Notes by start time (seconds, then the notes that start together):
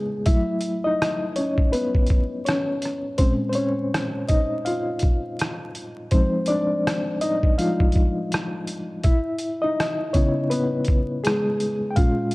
Already playing: C#3 G#3 B3 C#4 E4 G#4 B4 C#5
0.26 F#3 A3 E4 E5, kick, closed hi-hat
0.61 closed hi-hat
0.84 D#4 D#5
1.02 cross-stick, closed hi-hat
1.36 C#4 C#5, closed hi-hat
1.58 kick
1.72 B3 B4, closed hi-hat
1.95 kick
2.06 kick, closed hi-hat
2.45 C#4 C#5, cross-stick, closed hi-hat
2.82 cross-stick, closed hi-hat
3.18 A#2 G#3 C4 C#4 C5, kick, closed hi-hat
3.49 C5, closed hi-hat
3.55 C#4 C#5
3.94 cross-stick, closed hi-hat
4.28 D#4 D#5, kick, closed hi-hat
4.65 F4 F5, closed hi-hat
4.99 kick, closed hi-hat
5.39 cross-stick, closed hi-hat
5.75 closed hi-hat
6.11 F3 G#3 C4 D#4 C5, kick, closed hi-hat
6.46 D4 D5, closed hi-hat
6.87 cross-stick, closed hi-hat
7.21 D#4 D#5, closed hi-hat
7.43 kick
7.58 F3 G#3 D#4 F4 F5, closed hi-hat
7.80 kick
7.92 kick, closed hi-hat
8.32 cross-stick, closed hi-hat
8.67 closed hi-hat
9.04 E4 E5, kick, closed hi-hat
9.38 closed hi-hat
9.62 D#4 D#5
9.80 cross-stick, closed hi-hat
10.13 C#3 B3 C#4 E4 C#5, kick, closed hi-hat
10.50 B3 B4, closed hi-hat
10.85 kick, closed hi-hat
11.24 G#3 G#4, cross-stick, closed hi-hat
11.60 closed hi-hat
11.91 G5
11.96 A#2 G#3 C#4 F4 F5, kick, closed hi-hat
12.31 closed hi-hat